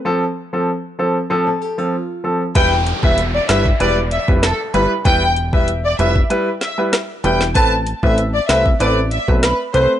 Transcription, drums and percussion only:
2.55 kick, closed hi-hat
2.87 closed hi-hat
3.03 kick
3.18 closed hi-hat
3.49 cross-stick, snare, closed hi-hat
3.66 kick
3.80 closed hi-hat
4.11 closed hi-hat
4.28 kick
4.43 cross-stick, snare, closed hi-hat
4.74 closed hi-hat
5.05 kick, closed hi-hat
5.36 closed hi-hat
5.53 kick
5.68 closed hi-hat
5.99 closed hi-hat
6.16 kick
6.30 closed hi-hat
6.61 snare, closed hi-hat
6.93 cross-stick, snare, closed hi-hat
7.24 closed hi-hat
7.41 snare
7.55 kick, closed hi-hat
7.87 closed hi-hat
8.03 kick
8.18 closed hi-hat
8.49 cross-stick, snare, closed hi-hat
8.66 kick
8.80 closed hi-hat
9.11 closed hi-hat
9.28 kick
9.43 cross-stick, snare, closed hi-hat
9.74 closed hi-hat

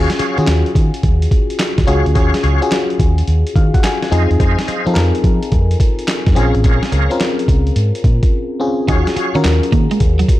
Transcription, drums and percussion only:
0.10 snare, closed hi-hat
0.19 closed hi-hat
0.38 closed hi-hat
0.47 snare, clap, closed hi-hat
0.66 closed hi-hat
0.75 kick, closed hi-hat
0.94 closed hi-hat
1.03 kick, closed hi-hat
1.22 closed hi-hat
1.31 kick, closed hi-hat
1.50 closed hi-hat
1.60 snare, clap, closed hi-hat
1.78 kick, snare, closed hi-hat
1.88 closed hi-hat
2.06 closed hi-hat
2.15 kick, closed hi-hat
2.34 snare, closed hi-hat
2.44 closed hi-hat
2.62 closed hi-hat
2.72 snare, clap, closed hi-hat
2.90 closed hi-hat
3.00 kick, closed hi-hat
3.18 closed hi-hat
3.27 closed hi-hat
3.47 closed hi-hat
3.56 kick, closed hi-hat
3.74 kick, closed hi-hat
3.84 snare, clap, closed hi-hat
4.02 snare, closed hi-hat
4.12 closed hi-hat
4.31 closed hi-hat
4.40 kick, closed hi-hat
4.59 snare, closed hi-hat
4.68 closed hi-hat
4.87 closed hi-hat
4.96 snare, clap, closed hi-hat
5.15 closed hi-hat
5.24 kick, closed hi-hat
5.43 closed hi-hat
5.52 kick, closed hi-hat
5.71 closed hi-hat
5.80 kick, closed hi-hat
5.99 closed hi-hat
6.08 snare, clap, closed hi-hat
6.26 kick, snare, closed hi-hat
6.36 closed hi-hat
6.55 closed hi-hat
6.64 kick, closed hi-hat
6.83 snare, closed hi-hat
6.92 closed hi-hat
7.11 closed hi-hat
7.20 snare, clap, closed hi-hat
7.39 closed hi-hat
7.48 kick, closed hi-hat
7.67 closed hi-hat
7.76 closed hi-hat
7.95 closed hi-hat
8.04 kick, closed hi-hat
8.23 kick, closed hi-hat
8.88 kick, closed hi-hat
9.07 snare, closed hi-hat
9.17 closed hi-hat
9.35 closed hi-hat
9.44 snare, clap, closed hi-hat
9.63 closed hi-hat
9.72 kick, closed hi-hat
9.91 closed hi-hat
10.00 kick, closed hi-hat
10.19 closed hi-hat
10.28 kick, closed hi-hat

